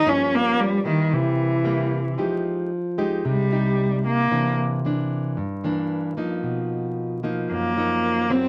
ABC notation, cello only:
X:1
M:4/4
L:1/8
Q:1/4=113
K:Cphr
V:1 name="Cello"
D B, G, E, =E,4 | z4 G,3 B,- | B, z6 z | z4 ^A,3 C |]